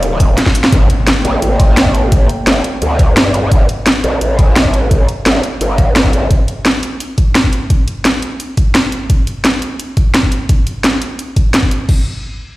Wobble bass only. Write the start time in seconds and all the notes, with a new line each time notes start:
Already playing: D#1
0.72 G1
1.25 A#1
1.42 A1
2.47 G1
2.82 D2
3.17 G2
3.52 G1
4.04 A#1
4.21 A1
5.26 G1
5.61 G1
6.13 A1